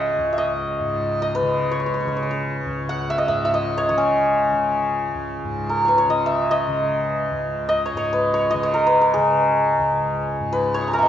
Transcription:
Already playing: C#2 G#2 C#3 G#4 B4 C#5 D#5 F#5
0.18 C#2
0.33 E5
0.38 D#5
0.80 G#2
1.22 D#5
1.35 B4
1.42 C#3
1.71 C#5
1.80 C#5
1.86 C#5
1.94 C#5
2.00 C#5
2.05 C#3 C#5
2.17 C#5
2.23 C#5
2.31 C#5
2.66 C#2
2.89 F#5
3.10 E5
3.18 D#5
3.28 G#2 E5
3.45 E5
3.54 D#5
3.78 C#5
3.89 C#3 C#5
3.98 C#4
4.52 C#3
5.14 C#2
5.45 G#2
5.69 A#4
5.85 B4 C#5
5.98 C#5
6.07 C#3 D#5
6.26 E5
6.51 D#5
6.68 C#3
7.31 C#2
7.69 D#5
7.86 C#5
7.94 G#2 C#5
8.13 B4
8.34 C#5
8.51 C#3 D#5
8.63 C#5
8.74 A#4
8.87 B4
9.01 A#4
9.14 C#3 G#4
9.78 C#2
10.40 G#2
10.53 B4
10.74 C#5
10.79 C#6 D#6
10.84 A#5 B5
10.91 A#4 F#5 G#5
10.99 C#3 D#5 E5
11.05 C#5

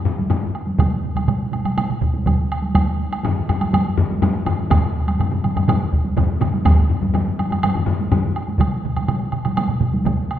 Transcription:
0.05 taiko low-mid
0.19 taiko high
0.30 taiko low-mid, taiko high, high woodblock
0.55 high woodblock
0.67 taiko high
0.79 taiko, taiko mid, taiko high, high woodblock
1.03 taiko mid
1.16 taiko mid, taiko high, high woodblock
1.28 taiko mid, taiko high, high woodblock
1.52 taiko mid, taiko high, high woodblock
1.65 taiko mid, taiko high, high woodblock
1.77 taiko mid, taiko high, high woodblock
1.90 taiko mid
2.02 taiko, taiko mid
2.14 taiko high
2.26 taiko, taiko mid, taiko high, high woodblock
2.52 high woodblock
2.63 taiko high
2.75 taiko, taiko high, high woodblock
3.12 taiko high, high woodblock
3.23 taiko low-mid, taiko high, high woodblock
3.48 taiko low-mid, taiko high, high woodblock
3.61 taiko high, high woodblock
3.73 taiko low-mid, taiko high, high woodblock
3.98 taiko low-mid
4.10 taiko high
4.22 taiko low-mid, taiko high, high woodblock
4.46 taiko low-mid, high woodblock
4.59 taiko high
4.70 taiko, taiko low-mid, taiko mid, taiko high, high woodblock
5.07 taiko high, high woodblock
5.20 taiko low-mid, taiko mid, taiko high, high woodblock
5.31 taiko low-mid, taiko mid
5.44 taiko low-mid, taiko mid, taiko high, high woodblock
5.56 taiko low-mid, taiko mid, taiko high, high woodblock
5.68 taiko low-mid, taiko mid, taiko high, high woodblock
5.93 taiko
6.05 taiko high
6.17 taiko, taiko low-mid, taiko mid, taiko high, high woodblock
6.41 taiko low-mid, taiko mid, high woodblock
6.54 taiko high
6.65 taiko, taiko low-mid, taiko high, high woodblock
6.89 taiko low-mid
7.02 taiko low-mid, taiko high
7.14 taiko low-mid, taiko high, high woodblock
7.39 taiko low-mid, taiko high, high woodblock
7.51 taiko low-mid, taiko high, high woodblock
7.63 taiko low-mid, taiko high, high woodblock
7.75 taiko low-mid
7.87 taiko low-mid
8.00 taiko high
8.12 taiko low-mid, taiko high, high woodblock
8.36 high woodblock
8.48 taiko high
8.59 taiko, taiko mid, taiko high, high woodblock
8.85 taiko mid
8.96 taiko mid, taiko high, high woodblock
9.08 taiko mid, taiko high, high woodblock
9.32 taiko mid, high woodblock
9.45 taiko mid, taiko high, high woodblock
9.57 taiko mid, taiko high, high woodblock
9.69 taiko mid
9.80 taiko, taiko mid
9.94 taiko high
10.05 taiko, taiko mid, taiko high, high woodblock
10.31 high woodblock

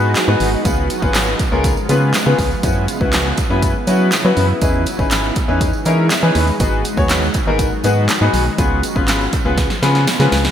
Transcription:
Already playing: G#2 F#3 G#3 B3 D#4 F#4 G#4 B4
0.15 snare, clap, closed hi-hat, tambourine
0.28 G#2 B3 D#4 F#4 G#4 B4
0.40 G#1, open hi-hat, tambourine
0.65 C#2 C#3 F3 G#3 B3 C#4 F4 G#4 B4, kick, closed hi-hat, tambourine
0.90 closed hi-hat, tambourine
1.02 G#1 B3 C#4 F4 G#4 B4, kick, tambourine
1.15 snare, clap, closed hi-hat, tambourine
1.27 tambourine
1.39 kick, closed hi-hat, tambourine
1.52 C#2 B3 C#4 F4 G#4 A#4
1.64 kick, closed hi-hat, tambourine
1.77 tambourine
1.89 C#3 B3 C#4 F4 G#4 B4, closed hi-hat, tambourine
2.14 snare, clap, closed hi-hat, tambourine
2.26 C#3 B3 C#4 F4 G#4 B4
2.39 C#2, kick, open hi-hat, tambourine
2.51 tambourine
2.63 F#2 E3 F#3 B3 C#4 E4 F#4 B4, kick, closed hi-hat, tambourine
2.88 closed hi-hat, tambourine
3.01 C#2 B3 C#4 E4 F#4 B4, kick
3.13 snare, clap, closed hi-hat, tambourine
3.37 kick, closed hi-hat, tambourine
3.50 F#2 B3 C#4 E4 F#4 B4
3.62 kick, closed hi-hat, tambourine
3.87 F#3 B3 C#4 E4 F#4 B4, closed hi-hat, tambourine
4.12 snare, clap, closed hi-hat, tambourine
4.24 F#3 B3 C#4 E4 F#4 B4
4.37 F#2, open hi-hat, tambourine
4.61 E2 G#3 C#4 D#4 E4 G#4 B4, kick, closed hi-hat, tambourine
4.86 closed hi-hat, tambourine
4.99 G#1 C#4 D#4 E4 G#4 B4, kick, tambourine
5.11 snare, clap, closed hi-hat, tambourine
5.24 tambourine
5.36 kick, closed hi-hat, tambourine
5.48 E2 C#4 D#4 E4 G#4 B4
5.61 kick, closed hi-hat, tambourine
5.73 tambourine
5.85 E3 C#4 D#4 E4 G#4 A#4, closed hi-hat, tambourine
6.10 E5, snare, clap, closed hi-hat, tambourine
6.22 E3 C#4 D#4 E4 G#4 B4
6.35 D#2 B5, open hi-hat, tambourine
6.47 tambourine
6.60 G#1 D#3 F#3 B3 D#4 F#4 G#4 B4, kick, closed hi-hat, tambourine
6.85 closed hi-hat, tambourine
6.97 D#2 B3 D#4 F#4 G#4 C#5, kick, tambourine
7.09 snare, clap, closed hi-hat, tambourine
7.22 tambourine
7.34 kick, closed hi-hat, tambourine
7.47 G#1 B3 D#4 F#4 G#4 A#4
7.59 kick, closed hi-hat, tambourine
7.84 G#2 B3 D#4 F#4 G#4 B4, closed hi-hat, tambourine
8.09 snare, clap, closed hi-hat, tambourine
8.21 G#2 B3 D#4 F#4 G#4 B4
8.34 B1, open hi-hat, tambourine
8.58 C#2 C#3 F3 B3 C#4 F4 G#4 B4, kick, closed hi-hat, tambourine
8.83 closed hi-hat, tambourine
8.96 G#1 B3 C#4 F4 G#4 B4, kick
9.08 snare, clap, closed hi-hat, tambourine
9.20 tambourine
9.33 kick, closed hi-hat, tambourine
9.45 C#2 B3 C#4 F4 G#4 B4
9.58 kick, snare, closed hi-hat, tambourine
9.70 snare, tambourine
9.82 C#3 B3 C#4 F4 G#4 B4, snare, closed hi-hat, tambourine
9.95 snare
10.07 snare, closed hi-hat, tambourine
10.20 C#3 B3 C#4 F4 G#4 B4, snare
10.32 C#2, snare, open hi-hat, tambourine
10.44 snare, tambourine

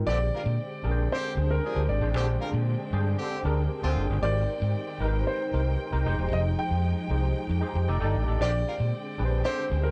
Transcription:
0.06 A#1 D3 G#3 C4 D4 G4 G#4 B4 D5 G5
0.13 C5
0.34 G3 F4 A#4
0.46 A#2
0.84 A#1 D4 G4 G#4 A#4
0.91 C5
1.12 D3 C4 G4 C5
1.36 D2 D4 G4 G#4 C5
1.51 A#4
1.63 F3 D4 G#4
1.74 D2 D4 G4 G#4 C5
1.89 G#1 D5
2.01 A1 D4 G4 G#4 C5
2.13 A#1 D3 C4 D4 G4 G#4 C5
2.40 G3 F4 A#4
2.53 A#2
2.93 G2 D4 G4 G#4 C5
3.18 D3 C4 G4
3.44 D2 D4 G4 G#4 A#4
3.83 D2 D3 C4 D4 F4 G4 G#4 C5
3.96 F#1
4.09 G1 D4 G4 G#4 C5
4.22 G#1 D#3 D#4 G4 A#4 C5 D5
4.62 G#2
5.00 G#1 D#4 G4 A#4 B4
5.08 C5
5.27 C5
5.53 C2 D#4 G4 A#4 C5
5.92 C2 D#4 G4 A#4 C5
6.05 F1 F3 G#3 D#4 G4 G#4 C5
6.18 E1
6.31 F1 D#5
6.59 G5
6.71 F2
7.10 C2 D#4 G4 G#4 C5
7.49 F2
7.61 D#4 G4 G#4 C5
7.75 F2
7.88 F1 D#3 A3 D4 D#4 G4 A4 D5
8.00 G1 D#4 G4 A4 D5
8.15 A1
8.27 A1 D#4 G4 A4 D5
8.39 A#1 D3 G#3 C4 D4 G4 G#4 C5 D5
8.67 G3 F4 A#4
8.80 A#2
9.18 A#1 D4 G4 G#4 B4
9.25 C5
9.44 D3 C4 G4 C5
9.70 D2 D4 G4 G#4 C5
9.83 A#4

